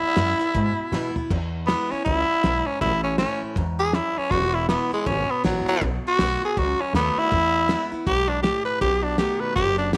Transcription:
0.00 0.51 E2 medium
0.00 1.11 E4 loud
0.00 muted upright bass stroke medium
0.16 0.39 F#2 medium
0.16 0.39 E3 medium
0.16 0.39 G#3 medium
0.16 0.39 B3 medium
0.16 0.38 E4 loud
0.16 snare loud
0.16 closed hi-hat medium
0.39 0.55 B3 medium
0.39 0.54 E4 medium
0.39 closed hi-hat medium
0.54 0.77 G#2 medium
0.54 1.27 B2 medium
0.54 kick loud
0.54 closed hi-hat medium
0.78 muted upright bass stroke medium
0.92 1.15 B2 medium
0.92 1.15 E3 medium
0.92 1.15 G#3 medium
0.92 1.15 B3 medium
0.92 1.15 E4 loud
0.92 snare medium
1.16 1.31 B3 soft
1.16 1.30 E4 medium
1.16 floor tom medium
1.30 1.73 E2 medium
1.30 2.03 E2 loud
1.30 kick loud
1.30 crash medium
1.67 1.90 E3 medium
1.67 1.91 G#3 medium
1.67 1.93 B3 medium
1.67 1.91 B3 medium
1.67 1.90 E4 medium
1.67 snare loud
1.67 open hi-hat medium
1.91 2.06 B3 soft
1.91 2.04 C#4 medium
1.91 2.05 E4 medium
1.91 muted upright bass stroke medium
2.05 2.26 C#2 medium
2.05 2.42 F#2 medium
2.05 2.68 E4 loud
2.05 kick loud
2.05 open hi-hat medium
2.29 muted upright bass stroke medium
2.44 2.63 B1 medium
2.44 2.80 G#2 medium
2.44 snare loud
2.44 open hi-hat soft
2.67 2.81 C#4 medium
2.81 3.24 A1 loud
2.81 3.54 A2 loud
2.81 3.03 E4 loud
2.81 kick loud
2.81 open hi-hat medium
3.03 3.17 C#4 medium
3.18 3.55 E3 medium
3.18 3.55 A3 medium
3.18 3.41 C#4 loud
3.18 3.56 C#4 loud
3.18 3.56 E4 loud
3.18 snare loud
3.18 open hi-hat soft
3.42 muted upright bass stroke medium
3.56 3.99 E2 medium
3.56 3.93 G#2 medium
3.56 kick loud
3.56 open hi-hat soft
3.79 3.96 G#4 loud
3.93 4.31 F#2 medium
3.93 4.20 E4 medium
3.93 snare loud
3.93 open hi-hat medium
4.17 4.33 C#4 medium
4.17 muted upright bass stroke medium
4.30 4.74 E1 loud
4.30 5.04 E2 medium
4.30 4.56 F#4 loud
4.30 kick loud
4.30 open hi-hat soft
4.54 4.68 E4 medium
4.69 4.91 E3 medium
4.69 4.92 G#3 medium
4.69 4.92 B3 medium
4.69 4.90 E4 loud
4.69 snare loud
4.69 open hi-hat medium
4.91 5.08 G#3 medium
4.91 5.07 B3 soft
4.91 5.06 E4 medium
4.91 muted upright bass stroke medium
5.06 5.26 G#1 medium
5.06 5.79 B2 medium
5.06 5.32 C#4 medium
5.06 kick loud
5.06 open hi-hat medium
5.31 5.44 B3 medium
5.44 5.64 A1 medium
5.44 5.66 E3 medium
5.44 5.67 F#3 medium
5.44 5.67 G#3 medium
5.44 5.67 B3 medium
5.44 5.66 E4 medium
5.44 snare loud
5.44 open hi-hat medium
5.66 5.82 F#3 loud
5.66 5.83 B3 medium
5.66 5.82 E4 medium
5.66 muted upright bass stroke medium
5.81 5.98 B1 medium
5.81 6.54 B2 medium
5.81 kick loud
5.81 open hi-hat medium
6.05 6.43 F#4 loud
6.05 muted upright bass stroke medium
6.19 6.39 B1 medium
6.19 6.42 D#3 medium
6.19 6.42 A3 medium
6.19 6.43 B3 medium
6.19 6.41 F#4 loud
6.19 snare loud
6.19 open hi-hat soft
6.42 6.57 B3 soft
6.42 6.56 F#4 medium
6.42 6.60 G#4 medium
6.57 6.77 C#2 medium
6.57 7.29 F#2 medium
6.57 6.82 F#4 loud
6.57 kick loud
6.57 open hi-hat soft
6.81 6.95 C#4 medium
6.93 7.13 D#2 medium
6.93 7.31 D#3 medium
6.93 7.31 A3 loud
6.93 7.20 B3 loud
6.93 7.32 B3 medium
6.93 snare loud
6.93 open hi-hat medium
6.97 7.32 F#4 loud
7.16 7.91 E4 loud
7.16 muted upright bass stroke medium
7.31 8.04 E2 medium
7.31 7.74 E2 loud
7.31 kick loud
7.31 open hi-hat medium
7.69 7.91 E3 medium
7.69 7.92 G#3 medium
7.69 7.92 B3 medium
7.69 7.90 E4 loud
7.69 snare loud
7.69 open hi-hat soft
7.92 8.07 B3 medium
7.92 8.06 E4 medium
7.92 muted upright bass stroke medium
8.07 8.49 B1 medium
8.07 8.43 G#2 medium
8.07 8.30 G4 loud
8.07 kick loud
8.07 open hi-hat medium
8.28 8.42 D4 medium
8.43 8.80 A2 medium
8.43 8.64 G4 medium
8.43 snare loud
8.43 open hi-hat medium
8.65 8.80 B4 medium
8.65 muted upright bass stroke medium
8.81 9.24 B1 loud
8.81 9.54 B2 medium
8.81 9.05 G4 loud
8.81 kick loud
8.81 open hi-hat medium
9.03 9.18 D4 medium
9.18 9.55 D#3 medium
9.18 9.55 A3 loud
9.18 9.56 B3 medium
9.18 9.56 F#4 medium
9.18 9.42 G4 medium
9.18 snare loud
9.18 open hi-hat soft
9.40 9.55 B4 medium
9.40 muted upright bass stroke medium
9.56 9.97 F#1 medium
9.56 9.97 F#2 medium
9.56 9.78 G4 loud
9.56 kick loud
9.56 open hi-hat soft
9.78 9.93 D4 medium
9.93 9.97 D#3 medium
9.93 9.97 A3 medium
9.93 9.97 G4 medium
9.93 snare loud
9.93 open hi-hat soft

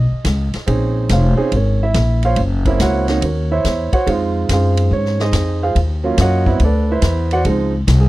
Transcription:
0.00 0.65 D#5 medium
0.12 muted upright bass stroke soft
0.24 0.52 C#2 medium
0.24 kick soft
0.24 snare medium
0.24 hi-hat pedal medium
0.24 ride medium
0.54 muted upright bass stroke soft
0.54 snare soft
0.54 ride soft
0.66 1.09 A#1 medium
0.66 1.32 C4 medium
0.66 1.33 C#4 medium
0.66 1.33 D#4 medium
0.66 1.33 G#4 medium
0.66 kick soft
0.66 ride medium
1.09 1.36 F1 loud
1.09 1.51 C5 medium
1.09 1.51 F5 medium
1.09 kick soft
1.09 snare medium
1.09 hi-hat pedal medium
1.09 ride medium
1.14 1.52 F4 medium
1.14 1.52 C#5 medium
1.37 1.51 C4 medium
1.37 1.51 C#4 medium
1.37 1.51 D#4 medium
1.37 1.51 G#4 medium
1.37 muted upright bass stroke soft
1.52 1.93 G#1 medium
1.52 1.82 G#4 soft
1.52 kick soft
1.52 ride medium
1.56 1.82 C#4 soft
1.56 1.82 A#4 soft
1.56 1.82 C#5 medium
1.83 2.22 E4 medium
1.83 2.22 E5 medium
1.94 2.36 A#1 loud
1.94 kick soft
1.94 snare medium
1.94 hi-hat pedal medium
1.94 ride medium
2.23 2.38 F4 medium
2.23 2.38 C5 medium
2.23 2.38 C#5 medium
2.23 2.38 F5 medium
2.23 ride soft
2.36 2.78 F#1 medium
2.36 kick soft
2.36 ride medium
2.65 3.06 A#3 medium
2.65 3.06 C4 medium
2.65 3.06 C#4 medium
2.65 3.06 E4 medium
2.65 kick medium
2.65 ride soft
2.79 3.21 C#2 medium
2.79 3.20 F#4 medium
2.79 3.20 C5 medium
2.79 3.21 C#5 medium
2.79 3.20 F#5 medium
2.79 kick soft
2.79 snare medium
2.79 hi-hat pedal medium
2.79 ride medium
3.08 3.21 A#3 medium
3.08 3.21 C4 medium
3.08 3.21 C#4 medium
3.08 3.21 D#4 medium
3.08 snare medium
3.08 ride soft
3.21 3.63 D#2 medium
3.21 3.51 C#4 soft
3.21 3.51 F#4 soft
3.21 3.51 A#4 soft
3.21 3.50 C#5 medium
3.21 kick soft
3.21 ride medium
3.51 3.91 E4 medium
3.51 3.91 C5 medium
3.51 3.91 C#5 medium
3.51 3.91 E5 medium
3.64 3.91 E2 medium
3.64 kick soft
3.64 snare medium
3.64 hi-hat pedal medium
3.64 ride medium
3.93 4.07 F#4 medium
3.93 4.07 C5 medium
3.93 4.07 C#5 medium
3.93 4.07 F#5 medium
3.93 muted upright bass stroke soft
3.93 kick medium
3.93 ride soft
4.07 4.48 F2 medium
4.07 5.26 G#3 medium
4.07 5.26 C4 medium
4.07 5.21 D#4 medium
4.07 4.52 F4 medium
4.07 kick soft
4.07 ride medium
4.49 4.90 F#2 medium
4.49 4.90 C5 medium
4.49 kick soft
4.49 snare medium
4.49 hi-hat pedal medium
4.49 ride medium
4.53 4.91 F4 medium
4.53 4.91 G#4 medium
4.53 4.91 F5 medium
4.77 ride medium
4.91 5.32 G#2 medium
4.91 5.20 C#4 medium
4.91 5.20 C#5 medium
4.91 kick soft
5.05 snare soft
5.19 5.61 D#4 medium
5.19 5.61 G#4 medium
5.19 5.60 C5 medium
5.19 5.60 D#5 medium
5.19 snare medium
5.32 5.74 F2 medium
5.32 kick soft
5.32 snare medium
5.32 hi-hat pedal medium
5.32 ride medium
5.63 5.77 F4 medium
5.63 5.77 G#4 medium
5.63 5.76 C5 medium
5.63 5.76 F5 medium
5.75 6.17 D#2 medium
5.75 kick soft
5.75 ride medium
6.04 6.44 F#3 medium
6.04 6.44 A#3 medium
6.04 6.44 C#4 medium
6.04 6.44 F4 medium
6.18 6.59 F#2 loud
6.18 6.59 F#4 medium
6.18 6.59 D#5 medium
6.18 6.60 F#5 loud
6.18 kick soft
6.18 snare medium
6.18 hi-hat pedal medium
6.18 ride medium
6.22 6.60 C#5 medium
6.46 6.59 F#3 medium
6.46 6.59 B3 medium
6.46 6.59 C4 medium
6.46 6.60 E4 medium
6.46 kick medium
6.60 7.02 D2 medium
6.60 kick soft
6.60 ride medium
6.64 6.91 D4 medium
6.64 6.91 A4 medium
6.64 6.90 B4 medium
6.64 6.90 D5 medium
6.91 7.30 E4 medium
6.91 7.30 B4 medium
6.91 7.30 C5 medium
6.91 7.30 E5 medium
7.02 7.44 E2 medium
7.02 kick soft
7.02 snare medium
7.02 hi-hat pedal medium
7.02 ride medium
7.31 7.41 F#4 medium
7.31 7.41 C5 medium
7.31 7.41 D5 medium
7.31 7.41 F#5 loud
7.31 ride soft
7.45 7.86 C#2 medium
7.45 7.71 F3 medium
7.45 7.72 G#3 medium
7.45 7.72 C4 medium
7.45 7.72 D#4 medium
7.45 kick soft
7.45 ride medium
7.87 8.09 C2 loud
7.87 kick soft
7.87 snare medium
7.87 hi-hat pedal medium
7.87 ride medium
8.01 8.09 G#4 medium

